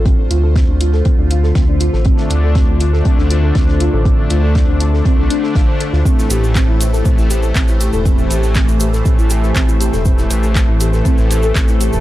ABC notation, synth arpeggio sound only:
X:1
M:4/4
L:1/16
Q:1/4=120
K:Dm
V:1 name="Synth arpeggio sound"
C D F A C D F A C D F A C D F A | C D F A C D F A C D F A C D F A | C D F A C D F A C D D A f c A F | C E G A C E G A C E G A C E G A |
C E G A C E G A C E G A C E G A | C E G A C E G A C E G A C E G A |]